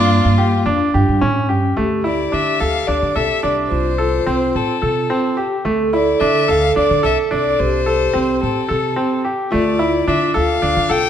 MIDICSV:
0, 0, Header, 1, 5, 480
1, 0, Start_track
1, 0, Tempo, 553506
1, 1539, Time_signature, 7, 3, 24, 8
1, 9622, End_track
2, 0, Start_track
2, 0, Title_t, "Violin"
2, 0, Program_c, 0, 40
2, 0, Note_on_c, 0, 65, 104
2, 1054, Note_off_c, 0, 65, 0
2, 1795, Note_on_c, 0, 74, 80
2, 2023, Note_on_c, 0, 76, 83
2, 2036, Note_off_c, 0, 74, 0
2, 2254, Note_on_c, 0, 77, 92
2, 2267, Note_off_c, 0, 76, 0
2, 2492, Note_on_c, 0, 74, 82
2, 2505, Note_off_c, 0, 77, 0
2, 2738, Note_on_c, 0, 76, 83
2, 2751, Note_off_c, 0, 74, 0
2, 2971, Note_off_c, 0, 76, 0
2, 2976, Note_on_c, 0, 74, 70
2, 3085, Note_off_c, 0, 74, 0
2, 3205, Note_on_c, 0, 72, 91
2, 3951, Note_on_c, 0, 69, 73
2, 3964, Note_off_c, 0, 72, 0
2, 4666, Note_off_c, 0, 69, 0
2, 5154, Note_on_c, 0, 74, 81
2, 5376, Note_on_c, 0, 76, 87
2, 5389, Note_off_c, 0, 74, 0
2, 5632, Note_on_c, 0, 77, 97
2, 5645, Note_off_c, 0, 76, 0
2, 5866, Note_off_c, 0, 77, 0
2, 5875, Note_on_c, 0, 74, 92
2, 6091, Note_off_c, 0, 74, 0
2, 6116, Note_on_c, 0, 76, 82
2, 6221, Note_off_c, 0, 76, 0
2, 6359, Note_on_c, 0, 74, 79
2, 6589, Note_on_c, 0, 72, 96
2, 6602, Note_off_c, 0, 74, 0
2, 7304, Note_off_c, 0, 72, 0
2, 7315, Note_on_c, 0, 69, 73
2, 7992, Note_off_c, 0, 69, 0
2, 8274, Note_on_c, 0, 74, 86
2, 8742, Note_on_c, 0, 76, 77
2, 8755, Note_off_c, 0, 74, 0
2, 8979, Note_off_c, 0, 76, 0
2, 8989, Note_on_c, 0, 77, 91
2, 9457, Note_on_c, 0, 79, 105
2, 9470, Note_off_c, 0, 77, 0
2, 9622, Note_off_c, 0, 79, 0
2, 9622, End_track
3, 0, Start_track
3, 0, Title_t, "Vibraphone"
3, 0, Program_c, 1, 11
3, 0, Note_on_c, 1, 58, 69
3, 591, Note_on_c, 1, 62, 76
3, 597, Note_off_c, 1, 58, 0
3, 1068, Note_on_c, 1, 61, 66
3, 1079, Note_off_c, 1, 62, 0
3, 1510, Note_off_c, 1, 61, 0
3, 1531, Note_on_c, 1, 67, 69
3, 3213, Note_on_c, 1, 65, 65
3, 3267, Note_off_c, 1, 67, 0
3, 4659, Note_on_c, 1, 67, 73
3, 4701, Note_off_c, 1, 65, 0
3, 4768, Note_off_c, 1, 67, 0
3, 4905, Note_on_c, 1, 69, 80
3, 6587, Note_on_c, 1, 67, 65
3, 6633, Note_off_c, 1, 69, 0
3, 7987, Note_off_c, 1, 67, 0
3, 8246, Note_on_c, 1, 65, 84
3, 9622, Note_off_c, 1, 65, 0
3, 9622, End_track
4, 0, Start_track
4, 0, Title_t, "Grand piano"
4, 0, Program_c, 2, 0
4, 0, Note_on_c, 2, 62, 82
4, 263, Note_off_c, 2, 62, 0
4, 329, Note_on_c, 2, 67, 62
4, 539, Note_off_c, 2, 67, 0
4, 570, Note_on_c, 2, 62, 64
4, 780, Note_off_c, 2, 62, 0
4, 816, Note_on_c, 2, 67, 66
4, 1023, Note_off_c, 2, 67, 0
4, 1053, Note_on_c, 2, 61, 72
4, 1262, Note_off_c, 2, 61, 0
4, 1290, Note_on_c, 2, 67, 58
4, 1500, Note_off_c, 2, 67, 0
4, 1532, Note_on_c, 2, 57, 70
4, 1741, Note_off_c, 2, 57, 0
4, 1769, Note_on_c, 2, 64, 60
4, 1980, Note_off_c, 2, 64, 0
4, 2012, Note_on_c, 2, 62, 59
4, 2222, Note_off_c, 2, 62, 0
4, 2257, Note_on_c, 2, 69, 64
4, 2465, Note_off_c, 2, 69, 0
4, 2499, Note_on_c, 2, 62, 59
4, 2705, Note_off_c, 2, 62, 0
4, 2736, Note_on_c, 2, 69, 65
4, 2944, Note_off_c, 2, 69, 0
4, 2975, Note_on_c, 2, 62, 60
4, 3390, Note_off_c, 2, 62, 0
4, 3454, Note_on_c, 2, 69, 65
4, 3663, Note_off_c, 2, 69, 0
4, 3698, Note_on_c, 2, 60, 65
4, 4112, Note_off_c, 2, 60, 0
4, 4179, Note_on_c, 2, 69, 59
4, 4386, Note_off_c, 2, 69, 0
4, 4422, Note_on_c, 2, 60, 69
4, 4628, Note_off_c, 2, 60, 0
4, 4656, Note_on_c, 2, 67, 59
4, 4864, Note_off_c, 2, 67, 0
4, 4898, Note_on_c, 2, 57, 75
4, 5106, Note_off_c, 2, 57, 0
4, 5143, Note_on_c, 2, 64, 61
4, 5349, Note_off_c, 2, 64, 0
4, 5383, Note_on_c, 2, 62, 71
4, 5588, Note_off_c, 2, 62, 0
4, 5620, Note_on_c, 2, 69, 69
4, 5827, Note_off_c, 2, 69, 0
4, 5862, Note_on_c, 2, 62, 65
4, 6068, Note_off_c, 2, 62, 0
4, 6097, Note_on_c, 2, 69, 74
4, 6304, Note_off_c, 2, 69, 0
4, 6338, Note_on_c, 2, 62, 66
4, 6751, Note_off_c, 2, 62, 0
4, 6818, Note_on_c, 2, 69, 63
4, 7025, Note_off_c, 2, 69, 0
4, 7055, Note_on_c, 2, 60, 62
4, 7468, Note_off_c, 2, 60, 0
4, 7532, Note_on_c, 2, 69, 66
4, 7741, Note_off_c, 2, 69, 0
4, 7773, Note_on_c, 2, 60, 68
4, 7981, Note_off_c, 2, 60, 0
4, 8018, Note_on_c, 2, 67, 62
4, 8224, Note_off_c, 2, 67, 0
4, 8253, Note_on_c, 2, 57, 77
4, 8460, Note_off_c, 2, 57, 0
4, 8491, Note_on_c, 2, 64, 67
4, 8699, Note_off_c, 2, 64, 0
4, 8737, Note_on_c, 2, 62, 69
4, 8943, Note_off_c, 2, 62, 0
4, 8968, Note_on_c, 2, 69, 71
4, 9177, Note_off_c, 2, 69, 0
4, 9210, Note_on_c, 2, 62, 61
4, 9418, Note_off_c, 2, 62, 0
4, 9447, Note_on_c, 2, 69, 72
4, 9622, Note_off_c, 2, 69, 0
4, 9622, End_track
5, 0, Start_track
5, 0, Title_t, "Upright bass"
5, 0, Program_c, 3, 32
5, 0, Note_on_c, 3, 43, 78
5, 165, Note_off_c, 3, 43, 0
5, 218, Note_on_c, 3, 43, 76
5, 526, Note_off_c, 3, 43, 0
5, 574, Note_on_c, 3, 41, 76
5, 678, Note_off_c, 3, 41, 0
5, 821, Note_on_c, 3, 43, 73
5, 922, Note_off_c, 3, 43, 0
5, 943, Note_on_c, 3, 43, 71
5, 1044, Note_off_c, 3, 43, 0
5, 1060, Note_on_c, 3, 45, 77
5, 1303, Note_off_c, 3, 45, 0
5, 1303, Note_on_c, 3, 43, 82
5, 1506, Note_off_c, 3, 43, 0
5, 1545, Note_on_c, 3, 38, 72
5, 1953, Note_off_c, 3, 38, 0
5, 2023, Note_on_c, 3, 50, 68
5, 2227, Note_off_c, 3, 50, 0
5, 2265, Note_on_c, 3, 38, 87
5, 2468, Note_off_c, 3, 38, 0
5, 2502, Note_on_c, 3, 38, 72
5, 2604, Note_off_c, 3, 38, 0
5, 2623, Note_on_c, 3, 50, 76
5, 2724, Note_off_c, 3, 50, 0
5, 2743, Note_on_c, 3, 36, 73
5, 2844, Note_off_c, 3, 36, 0
5, 2987, Note_on_c, 3, 36, 67
5, 3189, Note_off_c, 3, 36, 0
5, 3222, Note_on_c, 3, 36, 74
5, 3632, Note_off_c, 3, 36, 0
5, 3703, Note_on_c, 3, 36, 69
5, 3907, Note_off_c, 3, 36, 0
5, 3948, Note_on_c, 3, 45, 70
5, 4048, Note_off_c, 3, 45, 0
5, 4186, Note_on_c, 3, 48, 80
5, 4389, Note_off_c, 3, 48, 0
5, 4903, Note_on_c, 3, 38, 71
5, 5312, Note_off_c, 3, 38, 0
5, 5389, Note_on_c, 3, 50, 81
5, 5591, Note_off_c, 3, 50, 0
5, 5629, Note_on_c, 3, 38, 88
5, 5830, Note_off_c, 3, 38, 0
5, 5869, Note_on_c, 3, 38, 69
5, 5968, Note_off_c, 3, 38, 0
5, 5989, Note_on_c, 3, 50, 88
5, 6088, Note_off_c, 3, 50, 0
5, 6110, Note_on_c, 3, 36, 74
5, 6208, Note_off_c, 3, 36, 0
5, 6351, Note_on_c, 3, 36, 72
5, 6552, Note_off_c, 3, 36, 0
5, 6590, Note_on_c, 3, 36, 75
5, 6995, Note_off_c, 3, 36, 0
5, 7074, Note_on_c, 3, 36, 70
5, 7273, Note_off_c, 3, 36, 0
5, 7309, Note_on_c, 3, 45, 76
5, 7407, Note_off_c, 3, 45, 0
5, 7550, Note_on_c, 3, 48, 80
5, 7750, Note_off_c, 3, 48, 0
5, 8272, Note_on_c, 3, 38, 74
5, 8675, Note_off_c, 3, 38, 0
5, 8739, Note_on_c, 3, 50, 83
5, 8943, Note_off_c, 3, 50, 0
5, 8987, Note_on_c, 3, 38, 79
5, 9187, Note_off_c, 3, 38, 0
5, 9219, Note_on_c, 3, 38, 76
5, 9320, Note_off_c, 3, 38, 0
5, 9339, Note_on_c, 3, 50, 84
5, 9439, Note_off_c, 3, 50, 0
5, 9456, Note_on_c, 3, 36, 73
5, 9558, Note_off_c, 3, 36, 0
5, 9622, End_track
0, 0, End_of_file